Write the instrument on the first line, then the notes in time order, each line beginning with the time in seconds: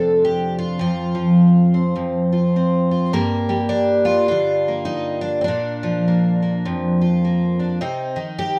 twelve-string acoustic guitar
Already playing: F2 C3 F3 A3 A4
0.00 D4
0.25 G4
0.59 F4
0.79 F2 F4
1.15 F3
1.74 C4
1.96 F2
2.33 F4
2.56 C4
2.91 F4
3.13 G2 A#3
3.49 G3
3.69 D4
4.05 F4
4.28 D3 F4
4.68 A#3
4.85 D#4
5.21 D4
5.41 C4 D4
5.48 A#2
5.83 F3
6.08 A#3
6.42 A#3
6.65 F2
7.01 F4
7.25 A#3
7.59 D4
7.81 C3 D#4
8.16 D#3
8.39 G4